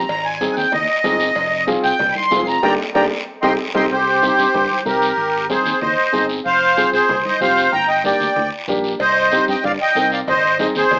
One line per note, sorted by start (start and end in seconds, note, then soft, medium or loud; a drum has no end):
0.09 0.48 G#1 loud
0.09 0.25 A#5 medium
0.09 cowbell loud
0.09 long guiro medium
0.25 0.56 G#5 medium
0.41 0.63 C4 medium
0.41 0.63 D#4 medium
0.41 0.64 G#4 medium
0.41 cowbell medium
0.41 high conga medium
0.41 short guiro medium
0.53 0.55 F#5 medium
0.57 0.64 D#2 medium
0.57 0.73 G5 medium
0.57 short guiro medium
0.72 0.86 D#2 medium
0.72 1.66 D#5 loud
0.72 cowbell medium
0.72 low conga medium
0.72 long guiro medium
1.04 1.30 G1 medium
1.04 1.27 C4 medium
1.04 1.27 D#4 medium
1.04 1.27 G#4 medium
1.04 cowbell medium
1.04 high conga medium
1.04 low timbale medium
1.04 short guiro medium
1.20 short guiro medium
1.35 1.74 F1 loud
1.35 cowbell loud
1.35 long guiro medium
1.67 1.90 C4 medium
1.67 1.90 F4 medium
1.67 1.90 G#4 loud
1.67 cowbell medium
1.67 high conga medium
1.67 short guiro medium
1.84 1.91 C2 medium
1.84 2.15 G5 loud
1.84 short guiro medium
1.99 2.13 C2 loud
1.99 cowbell medium
1.99 low conga medium
1.99 long guiro medium
2.12 2.14 B5 medium
2.12 high conga medium
2.16 2.47 C6 loud
2.31 2.57 F1 medium
2.31 2.54 C4 medium
2.31 2.54 F4 medium
2.31 2.54 G#4 medium
2.31 cowbell medium
2.31 high conga medium
2.31 low timbale medium
2.31 short guiro medium
2.47 2.62 A#5 medium
2.47 short guiro medium
2.63 2.76 G1 loud
2.63 2.73 A#3 loud
2.63 2.73 D4 loud
2.63 2.73 G4 loud
2.63 2.74 D5 loud
2.63 2.74 G5 medium
2.63 2.74 A#5 loud
2.63 high conga loud
2.63 high timbale loud
2.63 long guiro medium
2.95 3.07 G1 loud
2.95 3.05 A#3 loud
2.95 3.05 D4 loud
2.95 3.05 G4 loud
2.95 3.05 D5 medium
2.95 3.05 G5 medium
2.95 3.05 A#5 loud
2.95 high conga loud
2.95 high timbale medium
2.95 long guiro loud
3.42 3.55 C2 loud
3.42 3.53 C4 medium
3.42 3.53 D#4 loud
3.42 3.53 G4 loud
3.42 3.53 D#5 loud
3.42 3.53 G5 loud
3.42 3.53 C6 medium
3.42 high conga loud
3.42 high timbale loud
3.42 long guiro loud
3.74 3.87 C2 loud
3.74 3.85 C4 loud
3.74 3.85 D#4 loud
3.74 3.85 G4 loud
3.74 3.85 D#5 medium
3.74 3.85 G5 loud
3.74 3.85 C6 medium
3.74 high conga loud
3.74 high timbale loud
3.91 4.29 C2 loud
3.91 4.83 G4 medium
3.91 4.83 C5 medium
3.91 long guiro medium
4.22 4.45 C4 medium
4.22 4.45 D#4 medium
4.22 4.45 G4 medium
4.22 high conga medium
4.22 short guiro medium
4.39 4.45 G2 medium
4.39 short guiro medium
4.54 4.67 G2 medium
4.54 low conga medium
4.54 long guiro medium
4.70 high conga medium
4.85 5.11 C2 medium
4.85 5.08 C4 medium
4.85 5.08 D#4 medium
4.85 5.46 G4 medium
4.85 5.09 A#4 medium
4.85 5.46 A#4 medium
4.85 high conga medium
4.85 short guiro medium
5.02 short guiro medium
5.17 5.56 G#1 loud
5.17 long guiro medium
5.50 5.72 C4 medium
5.50 5.72 D#4 medium
5.50 5.73 G#4 medium
5.50 5.80 G#4 medium
5.50 5.80 C5 medium
5.50 high conga medium
5.50 short guiro medium
5.65 5.72 D#2 medium
5.65 short guiro medium
5.81 5.95 D#2 medium
5.81 6.26 C5 medium
5.81 6.26 D#5 medium
5.81 low conga medium
5.81 long guiro medium
6.12 6.40 G1 medium
6.12 6.35 C4 medium
6.12 6.36 D#4 medium
6.12 6.36 G#4 medium
6.12 high conga medium
6.12 low conga medium
6.12 short guiro medium
6.29 short guiro medium
6.45 6.84 F1 loud
6.45 6.90 C5 medium
6.45 6.90 F5 loud
6.45 long guiro medium
6.77 6.99 C4 medium
6.77 7.00 F4 medium
6.77 7.00 G#4 medium
6.77 high conga medium
6.77 short guiro medium
6.93 7.00 C2 medium
6.93 7.23 G#4 medium
6.93 7.24 C5 loud
6.93 short guiro medium
7.09 7.22 C2 medium
7.09 low conga medium
7.09 long guiro medium
7.25 7.40 C5 medium
7.25 7.40 D#5 medium
7.25 high conga medium
7.41 7.67 F1 medium
7.41 7.63 C4 medium
7.41 7.64 F4 medium
7.41 7.64 G4 medium
7.41 7.71 C5 medium
7.41 7.74 F5 loud
7.41 high conga medium
7.41 short guiro medium
7.57 short guiro medium
7.72 8.11 G1 loud
7.72 7.86 G5 medium
7.72 7.88 A#5 loud
7.72 low conga medium
7.72 long guiro medium
7.88 8.03 D#5 medium
7.88 8.04 G5 loud
8.04 8.27 A#3 medium
8.04 8.27 D4 medium
8.04 8.27 G4 medium
8.04 8.50 D5 medium
8.04 8.50 G5 medium
8.04 high conga medium
8.04 short guiro medium
8.20 8.27 D2 medium
8.20 short guiro medium
8.36 8.49 D2 medium
8.36 low conga medium
8.36 long guiro medium
8.68 8.94 A#1 medium
8.68 8.91 A#3 medium
8.68 8.91 D4 medium
8.68 8.91 G4 medium
8.68 high conga medium
8.68 low conga medium
8.68 short guiro medium
8.84 short guiro medium
9.00 9.39 C2 loud
9.00 9.45 C5 medium
9.00 9.45 D#5 loud
9.00 cowbell loud
9.00 long guiro medium
9.32 9.54 C4 medium
9.32 9.55 D#4 medium
9.32 9.55 G4 medium
9.32 cowbell medium
9.32 high conga medium
9.32 short guiro medium
9.48 9.55 G2 medium
9.48 9.64 D#5 medium
9.48 9.64 G5 loud
9.48 short guiro medium
9.64 9.77 G2 medium
9.64 9.72 D5 medium
9.64 9.72 F5 medium
9.64 cowbell medium
9.64 low conga medium
9.64 long guiro medium
9.81 10.11 D#5 medium
9.81 10.10 G5 loud
9.95 10.22 C2 medium
9.95 10.18 C4 medium
9.95 10.18 D#4 medium
9.95 10.19 A#4 medium
9.95 cowbell medium
9.95 high conga medium
9.95 short guiro medium
10.12 10.20 D5 medium
10.12 10.20 F5 medium
10.12 short guiro medium
10.27 10.66 G#1 loud
10.27 10.58 C5 medium
10.27 10.58 D#5 loud
10.27 cowbell loud
10.27 low conga medium
10.27 long guiro medium
10.59 10.82 C4 medium
10.59 10.82 D#4 medium
10.59 10.82 G#4 medium
10.59 10.67 C5 medium
10.59 10.67 D#5 medium
10.59 cowbell medium
10.59 high conga medium
10.59 short guiro medium
10.75 10.82 D#2 medium
10.75 10.99 G#4 medium
10.75 10.99 C5 loud
10.75 short guiro medium
10.91 10.99 D#2 medium
10.91 cowbell medium
10.91 low conga medium
10.91 long guiro medium